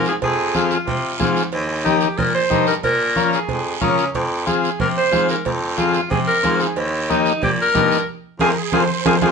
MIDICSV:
0, 0, Header, 1, 6, 480
1, 0, Start_track
1, 0, Key_signature, -4, "minor"
1, 0, Tempo, 327511
1, 324, Time_signature, 4, 2, 24, 8
1, 13652, End_track
2, 0, Start_track
2, 0, Title_t, "Accordion"
2, 0, Program_c, 0, 21
2, 12318, Note_on_c, 0, 70, 91
2, 12553, Note_on_c, 0, 68, 90
2, 12567, Note_off_c, 0, 70, 0
2, 12785, Note_on_c, 0, 72, 101
2, 12805, Note_off_c, 0, 68, 0
2, 13264, Note_off_c, 0, 72, 0
2, 13286, Note_on_c, 0, 72, 88
2, 13652, Note_off_c, 0, 72, 0
2, 13652, End_track
3, 0, Start_track
3, 0, Title_t, "Alto saxophone"
3, 0, Program_c, 1, 65
3, 122, Note_on_c, 1, 68, 87
3, 221, Note_off_c, 1, 68, 0
3, 348, Note_on_c, 1, 68, 109
3, 1006, Note_off_c, 1, 68, 0
3, 1083, Note_on_c, 1, 65, 85
3, 1964, Note_off_c, 1, 65, 0
3, 2707, Note_on_c, 1, 67, 91
3, 3186, Note_on_c, 1, 70, 96
3, 3208, Note_off_c, 1, 67, 0
3, 3426, Note_off_c, 1, 70, 0
3, 3435, Note_on_c, 1, 72, 104
3, 3884, Note_off_c, 1, 72, 0
3, 3918, Note_on_c, 1, 70, 83
3, 4027, Note_off_c, 1, 70, 0
3, 4156, Note_on_c, 1, 70, 108
3, 4828, Note_off_c, 1, 70, 0
3, 4898, Note_on_c, 1, 68, 85
3, 5791, Note_off_c, 1, 68, 0
3, 6567, Note_on_c, 1, 68, 82
3, 7010, Note_off_c, 1, 68, 0
3, 7049, Note_on_c, 1, 70, 88
3, 7155, Note_off_c, 1, 70, 0
3, 7288, Note_on_c, 1, 72, 111
3, 7731, Note_off_c, 1, 72, 0
3, 7763, Note_on_c, 1, 70, 76
3, 7985, Note_off_c, 1, 70, 0
3, 8488, Note_on_c, 1, 65, 87
3, 8931, Note_off_c, 1, 65, 0
3, 8959, Note_on_c, 1, 68, 94
3, 9067, Note_off_c, 1, 68, 0
3, 9191, Note_on_c, 1, 70, 113
3, 9688, Note_on_c, 1, 68, 89
3, 9710, Note_off_c, 1, 70, 0
3, 9924, Note_off_c, 1, 68, 0
3, 10420, Note_on_c, 1, 63, 95
3, 10857, Note_off_c, 1, 63, 0
3, 10891, Note_on_c, 1, 67, 96
3, 10996, Note_off_c, 1, 67, 0
3, 11159, Note_on_c, 1, 70, 113
3, 11811, Note_off_c, 1, 70, 0
3, 12324, Note_on_c, 1, 68, 97
3, 12438, Note_off_c, 1, 68, 0
3, 12800, Note_on_c, 1, 68, 89
3, 12916, Note_off_c, 1, 68, 0
3, 13287, Note_on_c, 1, 68, 89
3, 13401, Note_off_c, 1, 68, 0
3, 13528, Note_on_c, 1, 68, 87
3, 13642, Note_off_c, 1, 68, 0
3, 13652, End_track
4, 0, Start_track
4, 0, Title_t, "Transistor combo organ"
4, 0, Program_c, 2, 18
4, 0, Note_on_c, 2, 60, 73
4, 0, Note_on_c, 2, 65, 63
4, 0, Note_on_c, 2, 68, 79
4, 180, Note_off_c, 2, 60, 0
4, 183, Note_off_c, 2, 65, 0
4, 187, Note_off_c, 2, 68, 0
4, 805, Note_on_c, 2, 60, 79
4, 813, Note_on_c, 2, 65, 72
4, 814, Note_on_c, 2, 68, 89
4, 1140, Note_off_c, 2, 60, 0
4, 1144, Note_off_c, 2, 65, 0
4, 1144, Note_off_c, 2, 68, 0
4, 1749, Note_on_c, 2, 60, 88
4, 1755, Note_on_c, 2, 65, 80
4, 1758, Note_on_c, 2, 68, 89
4, 2092, Note_off_c, 2, 60, 0
4, 2095, Note_off_c, 2, 65, 0
4, 2096, Note_off_c, 2, 68, 0
4, 2710, Note_on_c, 2, 63, 78
4, 2715, Note_on_c, 2, 67, 70
4, 2718, Note_on_c, 2, 70, 83
4, 3052, Note_off_c, 2, 63, 0
4, 3054, Note_off_c, 2, 67, 0
4, 3055, Note_off_c, 2, 70, 0
4, 3665, Note_on_c, 2, 63, 76
4, 3673, Note_on_c, 2, 67, 65
4, 3683, Note_on_c, 2, 70, 80
4, 4009, Note_off_c, 2, 63, 0
4, 4013, Note_off_c, 2, 67, 0
4, 4018, Note_off_c, 2, 70, 0
4, 4634, Note_on_c, 2, 61, 79
4, 4636, Note_on_c, 2, 65, 71
4, 4643, Note_on_c, 2, 70, 88
4, 4973, Note_off_c, 2, 61, 0
4, 4974, Note_off_c, 2, 65, 0
4, 4978, Note_off_c, 2, 70, 0
4, 5588, Note_on_c, 2, 65, 75
4, 5591, Note_on_c, 2, 61, 85
4, 5600, Note_on_c, 2, 70, 90
4, 5930, Note_off_c, 2, 65, 0
4, 5932, Note_off_c, 2, 61, 0
4, 5936, Note_off_c, 2, 70, 0
4, 6543, Note_on_c, 2, 60, 76
4, 6547, Note_on_c, 2, 65, 74
4, 6554, Note_on_c, 2, 68, 88
4, 6888, Note_off_c, 2, 60, 0
4, 6890, Note_off_c, 2, 65, 0
4, 6893, Note_off_c, 2, 68, 0
4, 7497, Note_on_c, 2, 60, 69
4, 7504, Note_on_c, 2, 65, 66
4, 7509, Note_on_c, 2, 68, 75
4, 7844, Note_off_c, 2, 60, 0
4, 7848, Note_off_c, 2, 65, 0
4, 7850, Note_off_c, 2, 68, 0
4, 8456, Note_on_c, 2, 60, 79
4, 8467, Note_on_c, 2, 65, 73
4, 8475, Note_on_c, 2, 68, 84
4, 8804, Note_off_c, 2, 60, 0
4, 8809, Note_off_c, 2, 65, 0
4, 8813, Note_off_c, 2, 68, 0
4, 9426, Note_on_c, 2, 60, 68
4, 9438, Note_on_c, 2, 65, 67
4, 9443, Note_on_c, 2, 68, 79
4, 9769, Note_off_c, 2, 60, 0
4, 9775, Note_off_c, 2, 65, 0
4, 9777, Note_off_c, 2, 68, 0
4, 10400, Note_on_c, 2, 58, 80
4, 10403, Note_on_c, 2, 63, 71
4, 10411, Note_on_c, 2, 67, 89
4, 10736, Note_off_c, 2, 58, 0
4, 10738, Note_off_c, 2, 63, 0
4, 10742, Note_off_c, 2, 67, 0
4, 11352, Note_on_c, 2, 58, 69
4, 11354, Note_on_c, 2, 63, 68
4, 11362, Note_on_c, 2, 67, 75
4, 11693, Note_off_c, 2, 58, 0
4, 11694, Note_off_c, 2, 63, 0
4, 11697, Note_off_c, 2, 67, 0
4, 12322, Note_on_c, 2, 65, 102
4, 12326, Note_on_c, 2, 68, 101
4, 12328, Note_on_c, 2, 60, 107
4, 12475, Note_off_c, 2, 65, 0
4, 12478, Note_off_c, 2, 68, 0
4, 12479, Note_off_c, 2, 60, 0
4, 12799, Note_on_c, 2, 60, 89
4, 12800, Note_on_c, 2, 68, 93
4, 12801, Note_on_c, 2, 65, 90
4, 12954, Note_off_c, 2, 60, 0
4, 12954, Note_off_c, 2, 68, 0
4, 12955, Note_off_c, 2, 65, 0
4, 13273, Note_on_c, 2, 68, 97
4, 13274, Note_on_c, 2, 60, 93
4, 13278, Note_on_c, 2, 65, 94
4, 13430, Note_off_c, 2, 68, 0
4, 13431, Note_off_c, 2, 60, 0
4, 13434, Note_off_c, 2, 65, 0
4, 13510, Note_on_c, 2, 60, 87
4, 13512, Note_on_c, 2, 65, 91
4, 13512, Note_on_c, 2, 68, 98
4, 13652, Note_off_c, 2, 60, 0
4, 13652, Note_off_c, 2, 65, 0
4, 13652, Note_off_c, 2, 68, 0
4, 13652, End_track
5, 0, Start_track
5, 0, Title_t, "Baritone saxophone"
5, 0, Program_c, 3, 67
5, 0, Note_on_c, 3, 44, 89
5, 221, Note_off_c, 3, 44, 0
5, 322, Note_on_c, 3, 41, 98
5, 1090, Note_off_c, 3, 41, 0
5, 1277, Note_on_c, 3, 48, 83
5, 1663, Note_off_c, 3, 48, 0
5, 1766, Note_on_c, 3, 44, 85
5, 2148, Note_off_c, 3, 44, 0
5, 2241, Note_on_c, 3, 39, 96
5, 3009, Note_off_c, 3, 39, 0
5, 3192, Note_on_c, 3, 46, 91
5, 3580, Note_off_c, 3, 46, 0
5, 3677, Note_on_c, 3, 43, 83
5, 4063, Note_off_c, 3, 43, 0
5, 4154, Note_on_c, 3, 46, 98
5, 4924, Note_off_c, 3, 46, 0
5, 5121, Note_on_c, 3, 41, 80
5, 5505, Note_off_c, 3, 41, 0
5, 5604, Note_on_c, 3, 49, 91
5, 5986, Note_off_c, 3, 49, 0
5, 6082, Note_on_c, 3, 41, 99
5, 6533, Note_off_c, 3, 41, 0
5, 7035, Note_on_c, 3, 48, 86
5, 7421, Note_off_c, 3, 48, 0
5, 7522, Note_on_c, 3, 44, 88
5, 7905, Note_off_c, 3, 44, 0
5, 7992, Note_on_c, 3, 41, 100
5, 8763, Note_off_c, 3, 41, 0
5, 8942, Note_on_c, 3, 48, 84
5, 9333, Note_off_c, 3, 48, 0
5, 9433, Note_on_c, 3, 44, 91
5, 9820, Note_off_c, 3, 44, 0
5, 9916, Note_on_c, 3, 39, 100
5, 10686, Note_off_c, 3, 39, 0
5, 10872, Note_on_c, 3, 46, 92
5, 11260, Note_off_c, 3, 46, 0
5, 11345, Note_on_c, 3, 43, 91
5, 11736, Note_off_c, 3, 43, 0
5, 12308, Note_on_c, 3, 41, 93
5, 12493, Note_off_c, 3, 41, 0
5, 12799, Note_on_c, 3, 41, 90
5, 12979, Note_off_c, 3, 41, 0
5, 13274, Note_on_c, 3, 41, 90
5, 13457, Note_off_c, 3, 41, 0
5, 13534, Note_on_c, 3, 41, 94
5, 13652, Note_off_c, 3, 41, 0
5, 13652, End_track
6, 0, Start_track
6, 0, Title_t, "Drums"
6, 76, Note_on_c, 9, 73, 68
6, 222, Note_off_c, 9, 73, 0
6, 322, Note_on_c, 9, 56, 96
6, 322, Note_on_c, 9, 74, 64
6, 331, Note_on_c, 9, 64, 69
6, 469, Note_off_c, 9, 56, 0
6, 469, Note_off_c, 9, 74, 0
6, 478, Note_off_c, 9, 64, 0
6, 799, Note_on_c, 9, 73, 70
6, 804, Note_on_c, 9, 63, 79
6, 945, Note_off_c, 9, 73, 0
6, 950, Note_off_c, 9, 63, 0
6, 1038, Note_on_c, 9, 73, 70
6, 1185, Note_off_c, 9, 73, 0
6, 1281, Note_on_c, 9, 74, 69
6, 1282, Note_on_c, 9, 56, 76
6, 1287, Note_on_c, 9, 64, 84
6, 1427, Note_off_c, 9, 74, 0
6, 1428, Note_off_c, 9, 56, 0
6, 1433, Note_off_c, 9, 64, 0
6, 1758, Note_on_c, 9, 66, 71
6, 1758, Note_on_c, 9, 73, 69
6, 1770, Note_on_c, 9, 63, 87
6, 1770, Note_on_c, 9, 64, 76
6, 1905, Note_off_c, 9, 66, 0
6, 1905, Note_off_c, 9, 73, 0
6, 1917, Note_off_c, 9, 63, 0
6, 1917, Note_off_c, 9, 64, 0
6, 1999, Note_on_c, 9, 73, 70
6, 2145, Note_off_c, 9, 73, 0
6, 2228, Note_on_c, 9, 74, 63
6, 2236, Note_on_c, 9, 56, 101
6, 2374, Note_off_c, 9, 74, 0
6, 2383, Note_off_c, 9, 56, 0
6, 2715, Note_on_c, 9, 73, 70
6, 2729, Note_on_c, 9, 63, 83
6, 2861, Note_off_c, 9, 73, 0
6, 2876, Note_off_c, 9, 63, 0
6, 2942, Note_on_c, 9, 73, 68
6, 3088, Note_off_c, 9, 73, 0
6, 3188, Note_on_c, 9, 74, 70
6, 3200, Note_on_c, 9, 56, 77
6, 3205, Note_on_c, 9, 63, 76
6, 3205, Note_on_c, 9, 64, 83
6, 3334, Note_off_c, 9, 74, 0
6, 3347, Note_off_c, 9, 56, 0
6, 3351, Note_off_c, 9, 63, 0
6, 3351, Note_off_c, 9, 64, 0
6, 3675, Note_on_c, 9, 73, 67
6, 3683, Note_on_c, 9, 63, 82
6, 3683, Note_on_c, 9, 64, 71
6, 3822, Note_off_c, 9, 73, 0
6, 3830, Note_off_c, 9, 63, 0
6, 3830, Note_off_c, 9, 64, 0
6, 3912, Note_on_c, 9, 73, 70
6, 4059, Note_off_c, 9, 73, 0
6, 4154, Note_on_c, 9, 74, 68
6, 4157, Note_on_c, 9, 64, 67
6, 4162, Note_on_c, 9, 56, 102
6, 4301, Note_off_c, 9, 74, 0
6, 4303, Note_off_c, 9, 64, 0
6, 4309, Note_off_c, 9, 56, 0
6, 4633, Note_on_c, 9, 63, 82
6, 4637, Note_on_c, 9, 73, 68
6, 4780, Note_off_c, 9, 63, 0
6, 4784, Note_off_c, 9, 73, 0
6, 4884, Note_on_c, 9, 73, 68
6, 5031, Note_off_c, 9, 73, 0
6, 5108, Note_on_c, 9, 64, 85
6, 5115, Note_on_c, 9, 56, 81
6, 5122, Note_on_c, 9, 74, 69
6, 5255, Note_off_c, 9, 64, 0
6, 5261, Note_off_c, 9, 56, 0
6, 5268, Note_off_c, 9, 74, 0
6, 5593, Note_on_c, 9, 63, 83
6, 5593, Note_on_c, 9, 64, 73
6, 5593, Note_on_c, 9, 73, 62
6, 5604, Note_on_c, 9, 66, 70
6, 5739, Note_off_c, 9, 63, 0
6, 5739, Note_off_c, 9, 64, 0
6, 5739, Note_off_c, 9, 73, 0
6, 5750, Note_off_c, 9, 66, 0
6, 5832, Note_on_c, 9, 73, 70
6, 5978, Note_off_c, 9, 73, 0
6, 6077, Note_on_c, 9, 64, 69
6, 6084, Note_on_c, 9, 74, 62
6, 6086, Note_on_c, 9, 56, 97
6, 6224, Note_off_c, 9, 64, 0
6, 6231, Note_off_c, 9, 74, 0
6, 6232, Note_off_c, 9, 56, 0
6, 6550, Note_on_c, 9, 73, 69
6, 6554, Note_on_c, 9, 63, 78
6, 6696, Note_off_c, 9, 73, 0
6, 6701, Note_off_c, 9, 63, 0
6, 6803, Note_on_c, 9, 73, 72
6, 6950, Note_off_c, 9, 73, 0
6, 7032, Note_on_c, 9, 74, 71
6, 7033, Note_on_c, 9, 63, 73
6, 7033, Note_on_c, 9, 64, 83
6, 7037, Note_on_c, 9, 56, 76
6, 7178, Note_off_c, 9, 74, 0
6, 7179, Note_off_c, 9, 63, 0
6, 7179, Note_off_c, 9, 64, 0
6, 7183, Note_off_c, 9, 56, 0
6, 7512, Note_on_c, 9, 73, 68
6, 7517, Note_on_c, 9, 66, 71
6, 7520, Note_on_c, 9, 63, 86
6, 7658, Note_off_c, 9, 73, 0
6, 7664, Note_off_c, 9, 66, 0
6, 7667, Note_off_c, 9, 63, 0
6, 7749, Note_on_c, 9, 73, 72
6, 7896, Note_off_c, 9, 73, 0
6, 7991, Note_on_c, 9, 74, 65
6, 8001, Note_on_c, 9, 56, 103
6, 8006, Note_on_c, 9, 64, 73
6, 8137, Note_off_c, 9, 74, 0
6, 8148, Note_off_c, 9, 56, 0
6, 8153, Note_off_c, 9, 64, 0
6, 8470, Note_on_c, 9, 73, 69
6, 8473, Note_on_c, 9, 63, 78
6, 8617, Note_off_c, 9, 73, 0
6, 8620, Note_off_c, 9, 63, 0
6, 8699, Note_on_c, 9, 73, 68
6, 8845, Note_off_c, 9, 73, 0
6, 8942, Note_on_c, 9, 74, 73
6, 8954, Note_on_c, 9, 56, 74
6, 8962, Note_on_c, 9, 63, 76
6, 8962, Note_on_c, 9, 64, 88
6, 9089, Note_off_c, 9, 74, 0
6, 9101, Note_off_c, 9, 56, 0
6, 9109, Note_off_c, 9, 63, 0
6, 9109, Note_off_c, 9, 64, 0
6, 9428, Note_on_c, 9, 73, 68
6, 9443, Note_on_c, 9, 66, 76
6, 9445, Note_on_c, 9, 63, 87
6, 9574, Note_off_c, 9, 73, 0
6, 9590, Note_off_c, 9, 66, 0
6, 9591, Note_off_c, 9, 63, 0
6, 9672, Note_on_c, 9, 73, 67
6, 9818, Note_off_c, 9, 73, 0
6, 9912, Note_on_c, 9, 74, 69
6, 9919, Note_on_c, 9, 56, 97
6, 10059, Note_off_c, 9, 74, 0
6, 10065, Note_off_c, 9, 56, 0
6, 10401, Note_on_c, 9, 73, 71
6, 10414, Note_on_c, 9, 63, 82
6, 10547, Note_off_c, 9, 73, 0
6, 10561, Note_off_c, 9, 63, 0
6, 10634, Note_on_c, 9, 73, 68
6, 10781, Note_off_c, 9, 73, 0
6, 10871, Note_on_c, 9, 74, 70
6, 10884, Note_on_c, 9, 56, 78
6, 10887, Note_on_c, 9, 63, 77
6, 10887, Note_on_c, 9, 64, 89
6, 11017, Note_off_c, 9, 74, 0
6, 11031, Note_off_c, 9, 56, 0
6, 11034, Note_off_c, 9, 63, 0
6, 11034, Note_off_c, 9, 64, 0
6, 11352, Note_on_c, 9, 66, 72
6, 11360, Note_on_c, 9, 73, 66
6, 11365, Note_on_c, 9, 63, 82
6, 11365, Note_on_c, 9, 64, 73
6, 11499, Note_off_c, 9, 66, 0
6, 11507, Note_off_c, 9, 73, 0
6, 11511, Note_off_c, 9, 63, 0
6, 11511, Note_off_c, 9, 64, 0
6, 11602, Note_on_c, 9, 73, 72
6, 11748, Note_off_c, 9, 73, 0
6, 12303, Note_on_c, 9, 63, 89
6, 12315, Note_on_c, 9, 74, 99
6, 12322, Note_on_c, 9, 65, 96
6, 12450, Note_off_c, 9, 63, 0
6, 12461, Note_off_c, 9, 74, 0
6, 12469, Note_off_c, 9, 65, 0
6, 12785, Note_on_c, 9, 63, 98
6, 12793, Note_on_c, 9, 74, 96
6, 12794, Note_on_c, 9, 65, 92
6, 12932, Note_off_c, 9, 63, 0
6, 12940, Note_off_c, 9, 65, 0
6, 12940, Note_off_c, 9, 74, 0
6, 13273, Note_on_c, 9, 63, 105
6, 13275, Note_on_c, 9, 65, 103
6, 13280, Note_on_c, 9, 74, 101
6, 13420, Note_off_c, 9, 63, 0
6, 13422, Note_off_c, 9, 65, 0
6, 13426, Note_off_c, 9, 74, 0
6, 13509, Note_on_c, 9, 63, 96
6, 13511, Note_on_c, 9, 74, 91
6, 13515, Note_on_c, 9, 65, 95
6, 13652, Note_off_c, 9, 63, 0
6, 13652, Note_off_c, 9, 65, 0
6, 13652, Note_off_c, 9, 74, 0
6, 13652, End_track
0, 0, End_of_file